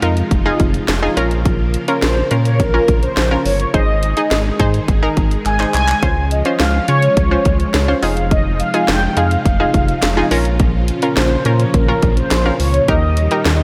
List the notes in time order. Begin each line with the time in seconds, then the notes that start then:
Already playing: C3 F3 G#3 D#4 F4
0.02 F2 D#4 F4 A#4, closed hi-hat
0.17 closed hi-hat
0.31 F1, kick, closed hi-hat
0.46 D#4 F4 G#4
0.60 F1, kick, closed hi-hat
0.74 closed hi-hat
0.88 F1, snare, closed hi-hat
1.03 D#4 F4 G#4
1.17 A#1 C#3 A#3 C#4 F4 A#4, closed hi-hat
1.31 closed hi-hat
1.46 kick, closed hi-hat
1.74 closed hi-hat
1.88 C#4 F4 A#4, closed hi-hat
2.02 A#1 C5, snare, closed hi-hat
2.31 A#2 C#4 F4 A#4, closed hi-hat
2.45 C#5, closed hi-hat
2.59 A#1 A#4, kick, closed hi-hat
2.74 C#4 F4 A#4
2.88 A#1, kick, closed hi-hat
3.02 C5, closed hi-hat
3.17 A#1, snare, closed hi-hat
3.31 C#4 F4 A#4
3.45 G1 C#5, open hi-hat
3.60 closed hi-hat
3.74 G#1 D#3 G#3 D#4 G#4 C5 D#5, kick, closed hi-hat
4.03 closed hi-hat
4.17 D#4 G#4 D#5, closed hi-hat
4.31 G#1, snare, closed hi-hat
4.59 G#2 D#4 G#4 C5, kick, closed hi-hat
4.74 closed hi-hat
4.88 G#1, kick, closed hi-hat
5.03 D#4 G#4 A#4
5.17 G#1, kick, closed hi-hat
5.31 closed hi-hat
5.45 G#1 G#5, clap, closed hi-hat
5.60 D#4 G#4 C5, clap
5.74 C2 G#5, clap, closed hi-hat
5.88 clap, closed hi-hat
6.03 C#2 F3 C#4 F4 C5, kick, closed hi-hat
6.31 D#5, closed hi-hat
6.45 C#4 F4 C5, closed hi-hat
6.60 C#2 F5, snare, closed hi-hat
6.88 C#3 C#4 F4 C#5, closed hi-hat
7.02 closed hi-hat
7.17 C#2, kick, closed hi-hat
7.31 C#4 F4 C5
7.45 C#2 C#5, kick, closed hi-hat
7.60 closed hi-hat
7.74 C#2, snare, closed hi-hat
7.88 C#4 F4 C5
8.03 F1 C3 D#4 F4 G#4 F5, open hi-hat
8.17 closed hi-hat
8.31 D#5, kick, closed hi-hat
8.60 F5, closed hi-hat
8.74 D#4 F4 G#4, closed hi-hat
8.88 F1 G5, snare, closed hi-hat
9.17 F2 D#4 F4 G#4 F5, closed hi-hat
9.31 closed hi-hat
9.45 F1 F5, kick, closed hi-hat
9.60 D#4 F4 G#4
9.74 F1, kick, closed hi-hat
9.88 closed hi-hat
10.03 F1, snare, clap, closed hi-hat
10.17 D#4 F4 G#4
10.31 A#1 A#2 C#3 F3 C#4 F4 A#4, open hi-hat
10.45 closed hi-hat
10.60 kick, closed hi-hat
10.88 closed hi-hat
11.02 C#4 F4 A#4, closed hi-hat
11.17 A#1 C5, snare, closed hi-hat
11.45 A#2 C#4 F4 A#4, closed hi-hat
11.60 C#5, closed hi-hat
11.74 A#1 A#4, kick, closed hi-hat
11.88 C#4 F4 A#4
12.02 A#1, kick, closed hi-hat
12.17 C5, closed hi-hat
12.31 A#1, snare, clap, closed hi-hat
12.46 C#4 F4 A#4
12.60 C#2 C#5, open hi-hat
12.74 closed hi-hat
12.88 D#2 D#3 G3 D#4 G4 A#4 D#5, kick, closed hi-hat
13.17 closed hi-hat
13.31 D#4 G4 A#4, closed hi-hat
13.45 D#2, snare, closed hi-hat